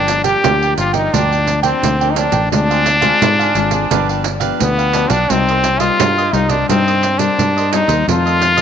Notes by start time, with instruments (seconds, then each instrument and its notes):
Already playing: fingered electric bass G1, nylon-string guitar G2 F3 A#3 D4, french horn D4
0.08 pandeiro
0.24 french horn G4, cavaquinho A#4 D5 G5, pandeiro
0.44 fingered electric bass D2, nylon-string guitar D3 F3 A#3 D4, cavaquinho F4 A#4 D5 G5, pandeiro
0.62 cavaquinho A#4 D5 G5, pandeiro
0.78 fingered electric bass G1, french horn F4, pandeiro
0.93 french horn D#4, cavaquinho A#4 D5 G5, pandeiro
1.13 fingered electric bass D2, nylon-string guitar G2 F3 A#3 D4, french horn D4, cavaquinho F4 A#4 D5 G5, pandeiro
1.31 cavaquinho A#4 D5 G5, pandeiro
1.47 muted cavaquinho stroke, pandeiro
1.63 nylon-string guitar F3 A#3 D4, french horn C4, cavaquinho A#4 D5 G5, pandeiro
1.83 fingered electric bass D2, nylon-string guitar D3, pandeiro
2.01 nylon-string guitar F3 A#3 D4, cavaquinho A#4 D5 G5, pandeiro
2.10 french horn D#4
2.16 nylon-string guitar F3 A#3 D4, french horn D4, cavaquinho F4 A#4 D5 G5, pandeiro
2.32 fingered electric bass A1, cavaquinho A#4 D5 G5, pandeiro
2.52 fingered electric bass D2, nylon-string guitar D3 G#3 C4 F4, cavaquinho D4 G#4 C5 F5, french horn D4, pandeiro
2.70 cavaquinho G#4 C5 F5, pandeiro
2.85 muted cavaquinho stroke, pandeiro
3.01 nylon-string guitar G#3 C4 F4, cavaquinho G#4 C5 F5, pandeiro
3.21 fingered electric bass G#2, nylon-string guitar D3, cavaquinho D4 G#4 C5 F5, pandeiro
3.39 cavaquinho G#4 C5 F5, pandeiro
3.55 fingered electric bass G#1, nylon-string guitar G#3 C4 F4, pandeiro
3.71 cavaquinho G#4 C5 F5, pandeiro
3.91 fingered electric bass G1, nylon-string guitar G2 F3 B3 D4, cavaquinho D4 G4 B4 F5, pandeiro
4.09 cavaquinho G4 B4 F5, pandeiro
4.24 muted cavaquinho stroke, pandeiro
4.40 nylon-string guitar F3 B3 D4, cavaquinho G4 B4 F5, pandeiro
4.60 fingered electric bass D2, nylon-string guitar D3, french horn B3, pandeiro
4.78 cavaquinho G4 B4 F5, pandeiro
4.93 nylon-string guitar F3 B3 D4, cavaquinho D4 G4 B4 F5, pandeiro
5.10 fingered electric bass B1, french horn D4, cavaquinho G4 B4 F5, pandeiro
5.30 fingered electric bass C2, nylon-string guitar C3 G3 A#3 D#4, french horn C4, cavaquinho D#4 A#4 C5 D#5, pandeiro
5.49 cavaquinho A#4 C5 D#5, pandeiro
5.64 muted cavaquinho stroke, pandeiro
5.80 nylon-string guitar G3 A#3 D#4, french horn F4, cavaquinho A#4 C5 D#5, pandeiro
6.00 fingered electric bass G2, nylon-string guitar G2, cavaquinho D#4 A#4 C5 D#5, pandeiro
6.18 cavaquinho A#4 C5 D#5, pandeiro
6.33 fingered electric bass C2, nylon-string guitar G3 A#3 D#4, french horn D#4, pandeiro
6.49 french horn D4, cavaquinho A#4 C5 D#5, pandeiro
6.69 fingered electric bass G2, nylon-string guitar C3 G3 A#3 D#4, french horn C4, cavaquinho D#4 A#4 C5 D#5, pandeiro
6.88 cavaquinho A#4 C5 D#5, pandeiro
7.02 muted cavaquinho stroke, pandeiro
7.19 nylon-string guitar G3 A#3, french horn D4, cavaquinho A#4 C5, pandeiro
7.39 fingered electric bass G2, nylon-string guitar G2, pandeiro
7.57 cavaquinho A#4 C5 D#5, pandeiro
7.72 nylon-string guitar G3 A#3 D#4, cavaquinho D#4 A#4 C5 D#5, french horn D#4, pandeiro
7.88 fingered electric bass D#2, cavaquinho A#4 C5 D#5, pandeiro
8.07 fingered electric bass F2, nylon-string guitar F2 D#3 A3 C4, cavaquinho F4 A4 C5 D#5, french horn F4, pandeiro
8.26 cavaquinho A4 C5 D#5, pandeiro
8.41 muted cavaquinho stroke, pandeiro
8.57 nylon-string guitar D#3, cavaquinho A4 C5 D#5, pandeiro